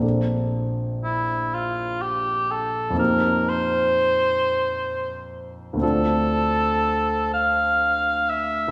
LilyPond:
<<
  \new Staff \with { instrumentName = "Cor anglais" } { \time 3/4 \key bes \major \tempo 4 = 62 r4 e'8 f'8 g'8 a'8 | bes'8 c''2 r8 | a'4. f''4 e''8 | }
  \new Staff \with { instrumentName = "Grand piano" } { \time 3/4 \key bes \major <bes,, bes c' d' a'>2. | <f, bes c' ees' g'>2. | <d, a c' d' f'>2. | }
>>